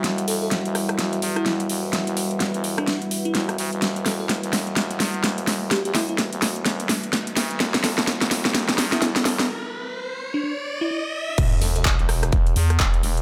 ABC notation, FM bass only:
X:1
M:4/4
L:1/16
Q:"Swing 16ths" 1/4=127
K:Em
V:1 name="FM bass" clef=bass
E,,,2 E,,,3 E,,,3 E,,,2 E,,2 E,,,2 E,,,2- | E,,, E,,,4 E,,,3 z4 E,,,2 D,, E,,, | E,,,2 E,,,3 E,,,3 E,,,2 E,,2 E,,,2 E,,,2- | E,,, E,,,4 E,,,3 E,,,2 z4 D,,2 |
E,,,2 E,,,3 E,,,3 E,,,2 E,,2 z4 | z16 | E,,,2 E,,,3 E,,,3 E,,,2 E,,2 E,,,2 E,,,2 |]